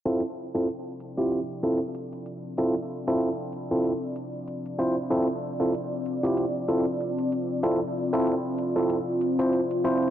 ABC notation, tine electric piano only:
X:1
M:4/4
L:1/16
Q:"Swing 16ths" 1/4=95
K:Dm
V:1 name="Tine electric piano"
[CEFA] z2 [CEFA] z3 [CEFG] z2 [CEFA] z4 z | [CEFA] z2 [CEFA] z3 [CEFA] z6 [CEFc] z | [CEFA] z2 [CEFA] z3 [CEFG] z2 [CEFA] z4 z | [CEFA] z2 [CEFA] z3 [CEFA] z3 [CEFc] z2 [CEFc]2 |]